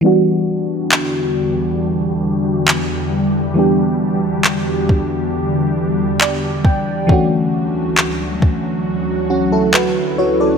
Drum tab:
CP |--x---x-|--x---x-|--x---x-|
BD |--------|---o---o|o--o----|